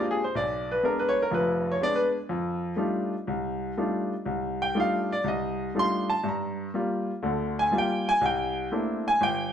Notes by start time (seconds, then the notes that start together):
Already playing: G#3 A#3 C4 D4 G4
0.00 F4
0.11 G#4
0.24 C5
0.35 B1 D5
0.71 B4
0.83 G#3 B3 D4 A#4
0.99 B4
1.09 C#5
1.22 A#4
1.31 F1 F2 B4
1.72 C#5
1.80 G#3 B3 D4 D5
1.95 B4
2.29 F2
2.76 G3 A3 D4 D#4 F4
3.27 C2
3.77 G3 A3 D4 D#4 F4
4.26 C2
4.62 G5
4.75 G3 A3 D4 D#4 F4
4.80 F5
5.12 D5
5.24 C2 D#5
5.75 G3 A3 D4 D#4 F4
5.79 C6
6.10 A5
6.24 G2
6.29 A#5
6.74 G3 A#3 F4
7.23 D2 D3
7.59 G#5
7.71 G3 A#3 F4
7.78 G5
8.09 G#5
8.21 C2
8.25 G5
8.72 A3 A#3 C4 D4 E4
9.08 G#5
9.21 G1 G5